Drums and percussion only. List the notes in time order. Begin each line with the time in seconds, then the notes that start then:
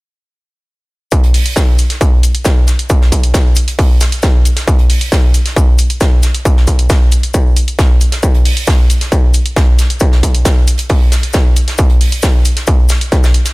1.12 kick, closed hi-hat, shaker
1.24 closed hi-hat
1.34 closed hi-hat, open hi-hat
1.46 closed hi-hat
1.56 kick, snare, closed hi-hat, shaker
1.78 closed hi-hat, shaker
1.90 snare, closed hi-hat
2.01 kick, closed hi-hat, shaker
2.23 closed hi-hat, shaker
2.35 closed hi-hat
2.45 kick, snare, closed hi-hat, shaker
2.67 snare, closed hi-hat, shaker
2.79 closed hi-hat
2.90 kick, closed hi-hat, shaker
3.02 snare
3.12 kick, closed hi-hat, shaker
3.23 closed hi-hat
3.34 kick, snare, closed hi-hat, shaker
3.55 closed hi-hat, shaker
3.68 closed hi-hat
3.79 kick, closed hi-hat, open hi-hat
4.00 snare, closed hi-hat, shaker
4.12 closed hi-hat
4.22 kick, snare, closed hi-hat, shaker
4.45 closed hi-hat, shaker
4.56 snare, closed hi-hat
4.68 kick, closed hi-hat, shaker
4.79 closed hi-hat
4.90 closed hi-hat, open hi-hat
5.01 closed hi-hat
5.12 kick, snare, closed hi-hat, shaker
5.34 closed hi-hat, shaker
5.46 snare, closed hi-hat
5.56 kick, closed hi-hat, shaker
5.78 closed hi-hat, shaker
5.90 closed hi-hat
6.01 kick, snare, closed hi-hat, shaker
6.22 snare, closed hi-hat, shaker
6.34 closed hi-hat
6.45 kick, closed hi-hat, shaker
6.57 snare
6.67 kick, closed hi-hat, shaker
6.79 closed hi-hat
6.89 kick, snare, closed hi-hat, shaker
7.12 closed hi-hat, shaker
7.23 closed hi-hat
7.34 kick, closed hi-hat, shaker
7.56 closed hi-hat, shaker
7.68 closed hi-hat
7.79 kick, snare, closed hi-hat, shaker
8.01 closed hi-hat, shaker
8.12 snare, closed hi-hat
8.23 kick, closed hi-hat, shaker
8.34 closed hi-hat
8.45 closed hi-hat, open hi-hat
8.57 closed hi-hat
8.67 kick, snare, closed hi-hat, shaker
8.90 closed hi-hat, shaker
9.01 snare, closed hi-hat
9.12 kick, closed hi-hat, shaker
9.34 closed hi-hat, shaker
9.46 closed hi-hat
9.56 kick, snare, closed hi-hat, shaker
9.79 snare, closed hi-hat, shaker
9.90 closed hi-hat
10.00 kick, closed hi-hat, shaker
10.12 snare
10.23 kick, closed hi-hat, shaker
10.35 closed hi-hat
10.45 kick, snare, closed hi-hat, shaker
10.67 closed hi-hat, shaker
10.78 closed hi-hat
10.89 kick, closed hi-hat, open hi-hat
11.12 snare, closed hi-hat, shaker
11.23 closed hi-hat
11.33 kick, snare, closed hi-hat, shaker
11.56 closed hi-hat, shaker
11.68 snare, closed hi-hat
11.78 kick, closed hi-hat, shaker
11.90 closed hi-hat
12.01 closed hi-hat, open hi-hat
12.12 closed hi-hat
12.23 kick, snare, closed hi-hat, shaker
12.45 closed hi-hat, shaker
12.56 snare, closed hi-hat
12.67 kick, closed hi-hat, shaker
12.89 snare, closed hi-hat, shaker
13.01 closed hi-hat
13.12 kick, snare, closed hi-hat, shaker
13.23 snare, shaker
13.34 closed hi-hat
13.45 snare, closed hi-hat, shaker